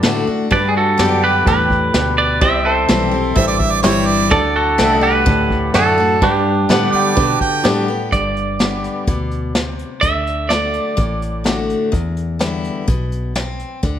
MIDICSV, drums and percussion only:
0, 0, Header, 1, 2, 480
1, 0, Start_track
1, 0, Key_signature, 1, "major"
1, 0, Tempo, 475436
1, 520, Time_signature, 4, 2, 24, 8
1, 14126, End_track
2, 0, Start_track
2, 0, Title_t, "Drums"
2, 33, Note_on_c, 9, 38, 100
2, 134, Note_off_c, 9, 38, 0
2, 519, Note_on_c, 9, 46, 50
2, 521, Note_on_c, 9, 36, 107
2, 620, Note_off_c, 9, 46, 0
2, 622, Note_off_c, 9, 36, 0
2, 1001, Note_on_c, 9, 38, 110
2, 1001, Note_on_c, 9, 46, 50
2, 1102, Note_off_c, 9, 38, 0
2, 1102, Note_off_c, 9, 46, 0
2, 1480, Note_on_c, 9, 46, 53
2, 1481, Note_on_c, 9, 36, 116
2, 1581, Note_off_c, 9, 46, 0
2, 1582, Note_off_c, 9, 36, 0
2, 1719, Note_on_c, 9, 36, 83
2, 1820, Note_off_c, 9, 36, 0
2, 1959, Note_on_c, 9, 38, 111
2, 1959, Note_on_c, 9, 46, 48
2, 2060, Note_off_c, 9, 38, 0
2, 2060, Note_off_c, 9, 46, 0
2, 2440, Note_on_c, 9, 36, 107
2, 2441, Note_on_c, 9, 46, 54
2, 2541, Note_off_c, 9, 36, 0
2, 2542, Note_off_c, 9, 46, 0
2, 2919, Note_on_c, 9, 38, 111
2, 2919, Note_on_c, 9, 46, 55
2, 3020, Note_off_c, 9, 38, 0
2, 3020, Note_off_c, 9, 46, 0
2, 3396, Note_on_c, 9, 46, 58
2, 3398, Note_on_c, 9, 36, 119
2, 3497, Note_off_c, 9, 46, 0
2, 3498, Note_off_c, 9, 36, 0
2, 3637, Note_on_c, 9, 36, 83
2, 3738, Note_off_c, 9, 36, 0
2, 3874, Note_on_c, 9, 38, 112
2, 3874, Note_on_c, 9, 46, 52
2, 3975, Note_off_c, 9, 38, 0
2, 3975, Note_off_c, 9, 46, 0
2, 4352, Note_on_c, 9, 46, 53
2, 4356, Note_on_c, 9, 36, 113
2, 4453, Note_off_c, 9, 46, 0
2, 4457, Note_off_c, 9, 36, 0
2, 4832, Note_on_c, 9, 38, 123
2, 4832, Note_on_c, 9, 46, 52
2, 4933, Note_off_c, 9, 38, 0
2, 4933, Note_off_c, 9, 46, 0
2, 5314, Note_on_c, 9, 46, 52
2, 5317, Note_on_c, 9, 36, 122
2, 5414, Note_off_c, 9, 46, 0
2, 5418, Note_off_c, 9, 36, 0
2, 5558, Note_on_c, 9, 36, 78
2, 5659, Note_off_c, 9, 36, 0
2, 5794, Note_on_c, 9, 38, 110
2, 5895, Note_off_c, 9, 38, 0
2, 6277, Note_on_c, 9, 46, 51
2, 6279, Note_on_c, 9, 36, 110
2, 6378, Note_off_c, 9, 46, 0
2, 6380, Note_off_c, 9, 36, 0
2, 6764, Note_on_c, 9, 38, 115
2, 6764, Note_on_c, 9, 46, 54
2, 6865, Note_off_c, 9, 38, 0
2, 6865, Note_off_c, 9, 46, 0
2, 7241, Note_on_c, 9, 46, 56
2, 7243, Note_on_c, 9, 36, 126
2, 7342, Note_off_c, 9, 46, 0
2, 7344, Note_off_c, 9, 36, 0
2, 7481, Note_on_c, 9, 36, 82
2, 7582, Note_off_c, 9, 36, 0
2, 7721, Note_on_c, 9, 38, 110
2, 7721, Note_on_c, 9, 46, 52
2, 7822, Note_off_c, 9, 38, 0
2, 7822, Note_off_c, 9, 46, 0
2, 8202, Note_on_c, 9, 36, 87
2, 8206, Note_on_c, 9, 42, 71
2, 8303, Note_off_c, 9, 36, 0
2, 8307, Note_off_c, 9, 42, 0
2, 8447, Note_on_c, 9, 42, 49
2, 8548, Note_off_c, 9, 42, 0
2, 8683, Note_on_c, 9, 38, 101
2, 8683, Note_on_c, 9, 42, 73
2, 8784, Note_off_c, 9, 38, 0
2, 8784, Note_off_c, 9, 42, 0
2, 8925, Note_on_c, 9, 42, 49
2, 9026, Note_off_c, 9, 42, 0
2, 9161, Note_on_c, 9, 42, 69
2, 9163, Note_on_c, 9, 36, 99
2, 9262, Note_off_c, 9, 42, 0
2, 9264, Note_off_c, 9, 36, 0
2, 9403, Note_on_c, 9, 42, 51
2, 9503, Note_off_c, 9, 42, 0
2, 9641, Note_on_c, 9, 38, 89
2, 9641, Note_on_c, 9, 42, 68
2, 9742, Note_off_c, 9, 38, 0
2, 9742, Note_off_c, 9, 42, 0
2, 9885, Note_on_c, 9, 42, 52
2, 9986, Note_off_c, 9, 42, 0
2, 10124, Note_on_c, 9, 36, 92
2, 10124, Note_on_c, 9, 42, 73
2, 10225, Note_off_c, 9, 36, 0
2, 10225, Note_off_c, 9, 42, 0
2, 10368, Note_on_c, 9, 42, 52
2, 10469, Note_off_c, 9, 42, 0
2, 10602, Note_on_c, 9, 38, 105
2, 10602, Note_on_c, 9, 42, 72
2, 10703, Note_off_c, 9, 38, 0
2, 10703, Note_off_c, 9, 42, 0
2, 10839, Note_on_c, 9, 42, 56
2, 10940, Note_off_c, 9, 42, 0
2, 11080, Note_on_c, 9, 42, 74
2, 11085, Note_on_c, 9, 36, 96
2, 11181, Note_off_c, 9, 42, 0
2, 11186, Note_off_c, 9, 36, 0
2, 11328, Note_on_c, 9, 42, 58
2, 11428, Note_off_c, 9, 42, 0
2, 11565, Note_on_c, 9, 38, 92
2, 11565, Note_on_c, 9, 42, 74
2, 11666, Note_off_c, 9, 38, 0
2, 11666, Note_off_c, 9, 42, 0
2, 11809, Note_on_c, 9, 42, 56
2, 11910, Note_off_c, 9, 42, 0
2, 12047, Note_on_c, 9, 36, 100
2, 12052, Note_on_c, 9, 42, 74
2, 12148, Note_off_c, 9, 36, 0
2, 12153, Note_off_c, 9, 42, 0
2, 12285, Note_on_c, 9, 42, 57
2, 12386, Note_off_c, 9, 42, 0
2, 12523, Note_on_c, 9, 38, 99
2, 12523, Note_on_c, 9, 42, 75
2, 12624, Note_off_c, 9, 38, 0
2, 12624, Note_off_c, 9, 42, 0
2, 12763, Note_on_c, 9, 42, 54
2, 12864, Note_off_c, 9, 42, 0
2, 13004, Note_on_c, 9, 42, 75
2, 13005, Note_on_c, 9, 36, 102
2, 13105, Note_off_c, 9, 42, 0
2, 13106, Note_off_c, 9, 36, 0
2, 13245, Note_on_c, 9, 42, 52
2, 13346, Note_off_c, 9, 42, 0
2, 13485, Note_on_c, 9, 38, 91
2, 13485, Note_on_c, 9, 42, 69
2, 13586, Note_off_c, 9, 38, 0
2, 13586, Note_off_c, 9, 42, 0
2, 13725, Note_on_c, 9, 42, 50
2, 13826, Note_off_c, 9, 42, 0
2, 13966, Note_on_c, 9, 36, 95
2, 13966, Note_on_c, 9, 42, 69
2, 14067, Note_off_c, 9, 36, 0
2, 14067, Note_off_c, 9, 42, 0
2, 14126, End_track
0, 0, End_of_file